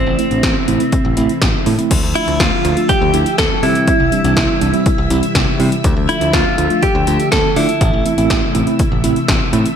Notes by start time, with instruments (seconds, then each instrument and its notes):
Already playing: string machine C3 E3 A3 E4, clean electric guitar C4
0.06 picked electric bass A1
0.19 tine electric piano A3 C4 E4, closed hi-hat
0.31 picked electric bass A1, tine electric piano A3 C4 D4, closed hi-hat
0.43 picked electric bass A1, kick, snare, closed hi-hat
0.68 picked electric bass A1, tine electric piano A3 C4 E4, closed hi-hat
0.80 closed hi-hat
0.92 kick, closed hi-hat
1.05 picked electric bass A1
1.17 picked electric bass A1, tine electric piano A3 C4 E4, closed hi-hat
1.29 closed hi-hat
1.42 picked electric bass A1, kick, snare, closed hi-hat
1.66 picked electric bass A2, tine electric piano A3 C4 E4, open hi-hat
1.79 tine electric piano A3 C4 E4, closed hi-hat
1.91 picked electric bass D2, string machine D3 F3 A3 E5, kick, closed hi-hat, crash
2.03 picked electric bass D2
2.15 tine electric piano A3 D4 F4, clean electric guitar E4, closed hi-hat
2.28 picked electric bass D2, tine electric piano A3 D4 F4, closed hi-hat
2.40 picked electric bass D2, clean electric guitar F4, kick, snare, closed hi-hat
2.65 picked electric bass D2, tine electric piano A3 D4 F4, closed hi-hat
2.77 tine electric piano A3 D4 F4, closed hi-hat
2.89 clean electric guitar G4, kick, closed hi-hat
3.01 picked electric bass D2
3.14 picked electric bass D2, tine electric piano A3 D4 E4, closed hi-hat
3.26 closed hi-hat
3.38 picked electric bass D2, clean electric guitar A4, kick, snare, closed hi-hat
3.63 picked electric bass C3, string machine C3 E3 G3, tine electric piano G3 C4 E4, clean electric guitar E4, open hi-hat
3.75 closed hi-hat
3.88 kick, closed hi-hat
4.00 picked electric bass C2
4.12 tine electric piano G3 C4 D4, closed hi-hat
4.24 picked electric bass C2, tine electric piano G3 C4 D4, closed hi-hat
4.37 picked electric bass C2, kick, snare, closed hi-hat
4.61 picked electric bass C2, tine electric piano G3 C4 D4, closed hi-hat
4.74 tine electric piano G3 C4 E4, closed hi-hat
4.86 kick, closed hi-hat
4.98 picked electric bass C2
5.10 picked electric bass C2, tine electric piano G3 C4 E4, closed hi-hat
5.23 closed hi-hat
5.35 picked electric bass C2, kick, snare, closed hi-hat
5.60 picked electric bass C3, tine electric piano G3 C4 E4, open hi-hat
5.72 closed hi-hat
5.84 picked electric bass D2, string machine D3 F3 A3, kick, closed hi-hat
5.97 picked electric bass D2
6.09 tine electric piano A3 D4 F4, clean electric guitar E4, closed hi-hat
6.21 picked electric bass D2, tine electric piano A3 D4 F4, closed hi-hat
6.33 picked electric bass D2, clean electric guitar F4, kick, snare, closed hi-hat
6.58 picked electric bass D2, tine electric piano A3 D4 F4, closed hi-hat
6.70 tine electric piano A3 D4 F4, closed hi-hat
6.83 clean electric guitar G4, kick, closed hi-hat
6.95 picked electric bass D2
7.07 picked electric bass D2, tine electric piano A3 D4 F4, closed hi-hat
7.20 closed hi-hat
7.32 picked electric bass D2, clean electric guitar A4, kick, snare, closed hi-hat
7.56 picked electric bass D3, tine electric piano A3 D4 F4, clean electric guitar E4, open hi-hat
7.69 closed hi-hat
7.81 picked electric bass A1, string machine C3 E3 E5, kick, closed hi-hat
7.93 picked electric bass A1
8.06 tine electric piano A3 C4 E4, closed hi-hat
8.18 picked electric bass A1, tine electric piano A3 C4 E4, closed hi-hat
8.30 picked electric bass A1, kick, snare, closed hi-hat
8.55 picked electric bass A1, tine electric piano A3 C4 E4, closed hi-hat
8.67 tine electric piano A3 C4 E4, closed hi-hat
8.79 kick, closed hi-hat
8.92 picked electric bass A1
9.04 picked electric bass A1, tine electric piano A3 C4 E4, closed hi-hat
9.16 closed hi-hat
9.28 picked electric bass A1, kick, snare, closed hi-hat
9.53 picked electric bass A2, tine electric piano A3 C4 E4, closed hi-hat
9.66 closed hi-hat